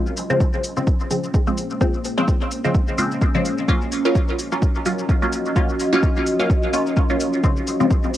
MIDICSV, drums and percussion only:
0, 0, Header, 1, 2, 480
1, 0, Start_track
1, 0, Key_signature, -5, "minor"
1, 0, Tempo, 468750
1, 1853, Time_signature, 4, 2, 24, 8
1, 8369, End_track
2, 0, Start_track
2, 0, Title_t, "Drums"
2, 67, Note_on_c, 9, 82, 20
2, 170, Note_off_c, 9, 82, 0
2, 173, Note_on_c, 9, 46, 79
2, 173, Note_on_c, 9, 82, 71
2, 276, Note_off_c, 9, 46, 0
2, 276, Note_off_c, 9, 82, 0
2, 306, Note_on_c, 9, 82, 30
2, 409, Note_off_c, 9, 82, 0
2, 413, Note_on_c, 9, 36, 122
2, 413, Note_on_c, 9, 82, 42
2, 515, Note_off_c, 9, 82, 0
2, 516, Note_off_c, 9, 36, 0
2, 547, Note_on_c, 9, 82, 20
2, 650, Note_off_c, 9, 82, 0
2, 653, Note_on_c, 9, 46, 82
2, 653, Note_on_c, 9, 82, 71
2, 756, Note_off_c, 9, 46, 0
2, 756, Note_off_c, 9, 82, 0
2, 787, Note_on_c, 9, 82, 30
2, 889, Note_off_c, 9, 82, 0
2, 893, Note_on_c, 9, 36, 119
2, 894, Note_on_c, 9, 82, 40
2, 996, Note_off_c, 9, 36, 0
2, 996, Note_off_c, 9, 82, 0
2, 1027, Note_on_c, 9, 82, 20
2, 1129, Note_off_c, 9, 82, 0
2, 1134, Note_on_c, 9, 46, 86
2, 1134, Note_on_c, 9, 82, 71
2, 1236, Note_off_c, 9, 46, 0
2, 1236, Note_off_c, 9, 82, 0
2, 1266, Note_on_c, 9, 82, 29
2, 1369, Note_off_c, 9, 82, 0
2, 1373, Note_on_c, 9, 36, 124
2, 1373, Note_on_c, 9, 82, 40
2, 1476, Note_off_c, 9, 36, 0
2, 1476, Note_off_c, 9, 82, 0
2, 1507, Note_on_c, 9, 82, 22
2, 1609, Note_off_c, 9, 82, 0
2, 1613, Note_on_c, 9, 46, 82
2, 1613, Note_on_c, 9, 82, 73
2, 1715, Note_off_c, 9, 46, 0
2, 1715, Note_off_c, 9, 82, 0
2, 1746, Note_on_c, 9, 82, 31
2, 1848, Note_off_c, 9, 82, 0
2, 1853, Note_on_c, 9, 36, 127
2, 1854, Note_on_c, 9, 82, 42
2, 1955, Note_off_c, 9, 36, 0
2, 1956, Note_off_c, 9, 82, 0
2, 1986, Note_on_c, 9, 82, 21
2, 2088, Note_off_c, 9, 82, 0
2, 2093, Note_on_c, 9, 46, 80
2, 2093, Note_on_c, 9, 82, 71
2, 2196, Note_off_c, 9, 46, 0
2, 2196, Note_off_c, 9, 82, 0
2, 2227, Note_on_c, 9, 82, 30
2, 2329, Note_off_c, 9, 82, 0
2, 2333, Note_on_c, 9, 36, 127
2, 2334, Note_on_c, 9, 82, 42
2, 2435, Note_off_c, 9, 36, 0
2, 2436, Note_off_c, 9, 82, 0
2, 2467, Note_on_c, 9, 82, 20
2, 2569, Note_off_c, 9, 82, 0
2, 2573, Note_on_c, 9, 46, 83
2, 2573, Note_on_c, 9, 82, 70
2, 2675, Note_off_c, 9, 46, 0
2, 2675, Note_off_c, 9, 82, 0
2, 2706, Note_on_c, 9, 82, 31
2, 2809, Note_off_c, 9, 82, 0
2, 2812, Note_on_c, 9, 36, 122
2, 2814, Note_on_c, 9, 82, 41
2, 2915, Note_off_c, 9, 36, 0
2, 2916, Note_off_c, 9, 82, 0
2, 2947, Note_on_c, 9, 82, 21
2, 3049, Note_off_c, 9, 82, 0
2, 3054, Note_on_c, 9, 46, 83
2, 3054, Note_on_c, 9, 82, 73
2, 3156, Note_off_c, 9, 46, 0
2, 3156, Note_off_c, 9, 82, 0
2, 3188, Note_on_c, 9, 82, 32
2, 3290, Note_off_c, 9, 82, 0
2, 3292, Note_on_c, 9, 36, 124
2, 3294, Note_on_c, 9, 82, 42
2, 3395, Note_off_c, 9, 36, 0
2, 3396, Note_off_c, 9, 82, 0
2, 3427, Note_on_c, 9, 82, 21
2, 3529, Note_off_c, 9, 82, 0
2, 3534, Note_on_c, 9, 46, 83
2, 3534, Note_on_c, 9, 82, 71
2, 3636, Note_off_c, 9, 46, 0
2, 3636, Note_off_c, 9, 82, 0
2, 3666, Note_on_c, 9, 82, 31
2, 3768, Note_off_c, 9, 82, 0
2, 3772, Note_on_c, 9, 36, 124
2, 3773, Note_on_c, 9, 82, 39
2, 3875, Note_off_c, 9, 36, 0
2, 3875, Note_off_c, 9, 82, 0
2, 3906, Note_on_c, 9, 82, 19
2, 4009, Note_off_c, 9, 82, 0
2, 4013, Note_on_c, 9, 46, 87
2, 4013, Note_on_c, 9, 82, 67
2, 4116, Note_off_c, 9, 46, 0
2, 4116, Note_off_c, 9, 82, 0
2, 4147, Note_on_c, 9, 82, 29
2, 4249, Note_off_c, 9, 82, 0
2, 4252, Note_on_c, 9, 36, 127
2, 4254, Note_on_c, 9, 82, 42
2, 4355, Note_off_c, 9, 36, 0
2, 4356, Note_off_c, 9, 82, 0
2, 4387, Note_on_c, 9, 82, 19
2, 4490, Note_off_c, 9, 82, 0
2, 4494, Note_on_c, 9, 46, 87
2, 4494, Note_on_c, 9, 82, 72
2, 4596, Note_off_c, 9, 46, 0
2, 4596, Note_off_c, 9, 82, 0
2, 4627, Note_on_c, 9, 82, 30
2, 4729, Note_off_c, 9, 82, 0
2, 4732, Note_on_c, 9, 36, 120
2, 4734, Note_on_c, 9, 82, 41
2, 4835, Note_off_c, 9, 36, 0
2, 4836, Note_off_c, 9, 82, 0
2, 4867, Note_on_c, 9, 82, 20
2, 4969, Note_off_c, 9, 82, 0
2, 4973, Note_on_c, 9, 46, 89
2, 4973, Note_on_c, 9, 82, 72
2, 5076, Note_off_c, 9, 46, 0
2, 5076, Note_off_c, 9, 82, 0
2, 5106, Note_on_c, 9, 82, 30
2, 5209, Note_off_c, 9, 82, 0
2, 5213, Note_on_c, 9, 36, 123
2, 5214, Note_on_c, 9, 82, 39
2, 5315, Note_off_c, 9, 36, 0
2, 5316, Note_off_c, 9, 82, 0
2, 5348, Note_on_c, 9, 82, 20
2, 5450, Note_off_c, 9, 82, 0
2, 5453, Note_on_c, 9, 46, 89
2, 5453, Note_on_c, 9, 82, 71
2, 5555, Note_off_c, 9, 46, 0
2, 5555, Note_off_c, 9, 82, 0
2, 5586, Note_on_c, 9, 82, 30
2, 5689, Note_off_c, 9, 82, 0
2, 5693, Note_on_c, 9, 36, 118
2, 5693, Note_on_c, 9, 82, 40
2, 5795, Note_off_c, 9, 36, 0
2, 5796, Note_off_c, 9, 82, 0
2, 5827, Note_on_c, 9, 82, 20
2, 5930, Note_off_c, 9, 82, 0
2, 5934, Note_on_c, 9, 46, 86
2, 5934, Note_on_c, 9, 82, 66
2, 6037, Note_off_c, 9, 46, 0
2, 6037, Note_off_c, 9, 82, 0
2, 6069, Note_on_c, 9, 82, 29
2, 6171, Note_off_c, 9, 82, 0
2, 6173, Note_on_c, 9, 36, 123
2, 6176, Note_on_c, 9, 82, 39
2, 6275, Note_off_c, 9, 36, 0
2, 6278, Note_off_c, 9, 82, 0
2, 6309, Note_on_c, 9, 82, 19
2, 6411, Note_off_c, 9, 82, 0
2, 6414, Note_on_c, 9, 46, 86
2, 6414, Note_on_c, 9, 82, 64
2, 6516, Note_off_c, 9, 46, 0
2, 6516, Note_off_c, 9, 82, 0
2, 6548, Note_on_c, 9, 82, 30
2, 6650, Note_off_c, 9, 82, 0
2, 6653, Note_on_c, 9, 36, 124
2, 6654, Note_on_c, 9, 82, 39
2, 6755, Note_off_c, 9, 36, 0
2, 6757, Note_off_c, 9, 82, 0
2, 6788, Note_on_c, 9, 82, 20
2, 6891, Note_off_c, 9, 82, 0
2, 6894, Note_on_c, 9, 46, 88
2, 6894, Note_on_c, 9, 82, 69
2, 6996, Note_off_c, 9, 46, 0
2, 6996, Note_off_c, 9, 82, 0
2, 7027, Note_on_c, 9, 82, 29
2, 7129, Note_off_c, 9, 82, 0
2, 7133, Note_on_c, 9, 36, 124
2, 7133, Note_on_c, 9, 82, 39
2, 7236, Note_off_c, 9, 36, 0
2, 7236, Note_off_c, 9, 82, 0
2, 7266, Note_on_c, 9, 82, 20
2, 7368, Note_off_c, 9, 82, 0
2, 7374, Note_on_c, 9, 46, 87
2, 7374, Note_on_c, 9, 82, 69
2, 7476, Note_off_c, 9, 46, 0
2, 7476, Note_off_c, 9, 82, 0
2, 7507, Note_on_c, 9, 82, 29
2, 7610, Note_off_c, 9, 82, 0
2, 7614, Note_on_c, 9, 36, 118
2, 7614, Note_on_c, 9, 82, 39
2, 7716, Note_off_c, 9, 36, 0
2, 7716, Note_off_c, 9, 82, 0
2, 7747, Note_on_c, 9, 82, 19
2, 7850, Note_off_c, 9, 82, 0
2, 7854, Note_on_c, 9, 46, 82
2, 7854, Note_on_c, 9, 82, 63
2, 7956, Note_off_c, 9, 46, 0
2, 7956, Note_off_c, 9, 82, 0
2, 7987, Note_on_c, 9, 82, 29
2, 8090, Note_off_c, 9, 82, 0
2, 8094, Note_on_c, 9, 36, 121
2, 8094, Note_on_c, 9, 82, 38
2, 8196, Note_off_c, 9, 36, 0
2, 8196, Note_off_c, 9, 82, 0
2, 8228, Note_on_c, 9, 82, 19
2, 8331, Note_off_c, 9, 82, 0
2, 8334, Note_on_c, 9, 46, 83
2, 8334, Note_on_c, 9, 82, 68
2, 8369, Note_off_c, 9, 46, 0
2, 8369, Note_off_c, 9, 82, 0
2, 8369, End_track
0, 0, End_of_file